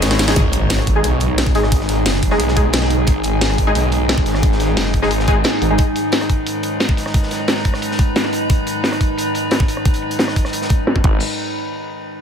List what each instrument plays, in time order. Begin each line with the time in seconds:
Already playing: synth drone G#2 D#3 D#4 C#5
0.02 fm bass G#1, snare, closed hi-hat
0.11 snare
0.19 snare, closed hi-hat
0.28 synth stab G#3 D#4 G#4, snare, closed hi-hat
0.36 detuned saw bass G#1, synth drone G#2 D#3 D#4 G#4, kick, closed hi-hat, impact
0.53 detuned saw bass G#1, closed hi-hat
0.70 snare, closed hi-hat
0.78 cross-stick, closed hi-hat
0.87 detuned saw bass G#1, kick, closed hi-hat
0.96 synth stab G#3 D#4 G#4
1.04 detuned saw bass B1, closed hi-hat
1.20 closed hi-hat
1.38 snare, closed hi-hat
1.47 kick
1.55 detuned saw bass G#1, synth stab G#3 D#4 G#4, snare, closed hi-hat
1.63 cross-stick, snare
1.72 kick, closed hi-hat
1.80 snare
1.89 snare, closed hi-hat
2.06 detuned saw bass F#1, snare, closed hi-hat
2.14 snare
2.23 kick, closed hi-hat
2.30 synth stab G#3 D#4 G#4, cross-stick, snare
2.40 detuned saw bass B1, closed hi-hat
2.48 snare
2.57 synth stab G#3 D#4 G#4, kick, closed hi-hat
2.73 snare, closed hi-hat
2.82 snare
2.91 closed hi-hat
3.07 detuned saw bass G#1, kick, closed hi-hat
3.24 detuned saw bass G#1, closed hi-hat
3.41 snare, closed hi-hat
3.50 cross-stick, closed hi-hat
3.58 detuned saw bass G#1, kick, closed hi-hat
3.67 synth stab G#3 D#4 G#4
3.75 detuned saw bass B1, closed hi-hat
3.92 closed hi-hat
4.09 snare, closed hi-hat
4.18 kick
4.26 detuned saw bass G#1, snare, closed hi-hat
4.34 cross-stick, snare
4.43 kick, closed hi-hat
4.52 snare
4.60 snare, closed hi-hat
4.77 detuned saw bass F#1, snare, closed hi-hat
4.85 snare
4.94 kick, closed hi-hat
5.02 synth stab G#3 D#4 G#4, cross-stick, snare
5.11 detuned saw bass G#1, closed hi-hat
5.20 snare
5.28 synth stab G#3 D#4 G#4, kick, closed hi-hat
5.44 snare, closed hi-hat
5.53 snare
5.62 detuned saw bass G#1, closed hi-hat
5.70 synth stab G#3 D#4 G#4
5.78 synth drone B4, kick, closed hi-hat
5.96 closed hi-hat
6.12 snare, closed hi-hat
6.21 cross-stick, closed hi-hat
6.29 kick, closed hi-hat
6.47 closed hi-hat
6.63 closed hi-hat
6.80 snare, closed hi-hat
6.89 kick
6.97 snare, closed hi-hat
7.06 cross-stick, snare
7.14 kick, closed hi-hat
7.23 snare
7.31 snare, closed hi-hat
7.48 snare, closed hi-hat
7.56 snare
7.65 kick, closed hi-hat
7.74 cross-stick, snare
7.82 closed hi-hat
7.91 snare
7.99 kick, closed hi-hat
8.16 snare, closed hi-hat
8.24 snare
8.33 closed hi-hat
8.50 kick, closed hi-hat
8.67 closed hi-hat
8.84 snare, closed hi-hat
8.92 cross-stick, closed hi-hat
9.01 kick, closed hi-hat
9.18 closed hi-hat
9.35 closed hi-hat
9.51 snare, closed hi-hat
9.60 kick
9.68 closed hi-hat
9.77 cross-stick
9.85 kick, closed hi-hat
9.94 closed hi-hat
10.02 closed hi-hat
10.11 closed hi-hat
10.19 snare, closed hi-hat
10.28 cross-stick, snare
10.36 kick, closed hi-hat
10.45 cross-stick, snare
10.53 closed hi-hat
10.62 snare
10.70 kick, closed hi-hat
10.87 snare, closed hi-hat
10.96 kick, snare
11.04 detuned saw bass G#1, kick, crash